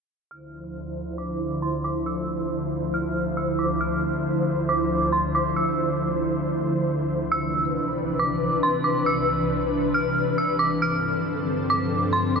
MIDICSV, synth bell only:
0, 0, Header, 1, 2, 480
1, 0, Start_track
1, 0, Tempo, 437956
1, 338, Time_signature, 4, 2, 24, 8
1, 13590, End_track
2, 0, Start_track
2, 0, Title_t, "Synth bell"
2, 0, Program_c, 0, 98
2, 340, Note_on_c, 0, 89, 99
2, 790, Note_off_c, 0, 89, 0
2, 1295, Note_on_c, 0, 86, 80
2, 1747, Note_off_c, 0, 86, 0
2, 1779, Note_on_c, 0, 84, 77
2, 2006, Note_off_c, 0, 84, 0
2, 2020, Note_on_c, 0, 86, 86
2, 2247, Note_off_c, 0, 86, 0
2, 2261, Note_on_c, 0, 88, 99
2, 2710, Note_off_c, 0, 88, 0
2, 3221, Note_on_c, 0, 89, 78
2, 3670, Note_off_c, 0, 89, 0
2, 3694, Note_on_c, 0, 88, 80
2, 3924, Note_off_c, 0, 88, 0
2, 3932, Note_on_c, 0, 86, 82
2, 4163, Note_off_c, 0, 86, 0
2, 4172, Note_on_c, 0, 89, 83
2, 4626, Note_off_c, 0, 89, 0
2, 5139, Note_on_c, 0, 86, 85
2, 5589, Note_off_c, 0, 86, 0
2, 5617, Note_on_c, 0, 84, 81
2, 5845, Note_off_c, 0, 84, 0
2, 5862, Note_on_c, 0, 86, 75
2, 6088, Note_off_c, 0, 86, 0
2, 6098, Note_on_c, 0, 88, 89
2, 6549, Note_off_c, 0, 88, 0
2, 8019, Note_on_c, 0, 88, 108
2, 8469, Note_off_c, 0, 88, 0
2, 8981, Note_on_c, 0, 86, 85
2, 9431, Note_off_c, 0, 86, 0
2, 9459, Note_on_c, 0, 84, 90
2, 9686, Note_off_c, 0, 84, 0
2, 9690, Note_on_c, 0, 86, 80
2, 9921, Note_off_c, 0, 86, 0
2, 9933, Note_on_c, 0, 88, 104
2, 10386, Note_off_c, 0, 88, 0
2, 10898, Note_on_c, 0, 89, 78
2, 11349, Note_off_c, 0, 89, 0
2, 11377, Note_on_c, 0, 88, 81
2, 11605, Note_off_c, 0, 88, 0
2, 11609, Note_on_c, 0, 86, 90
2, 11841, Note_off_c, 0, 86, 0
2, 11859, Note_on_c, 0, 89, 93
2, 12310, Note_off_c, 0, 89, 0
2, 12823, Note_on_c, 0, 86, 86
2, 13271, Note_off_c, 0, 86, 0
2, 13291, Note_on_c, 0, 84, 84
2, 13522, Note_off_c, 0, 84, 0
2, 13545, Note_on_c, 0, 86, 77
2, 13590, Note_off_c, 0, 86, 0
2, 13590, End_track
0, 0, End_of_file